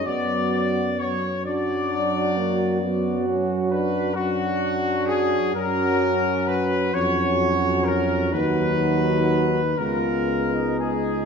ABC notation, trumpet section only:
X:1
M:12/8
L:1/8
Q:3/8=43
K:Blyd
V:1 name="Trumpet section"
=d2 c d4 z B F2 G | A2 B c2 A B3 A2 G |]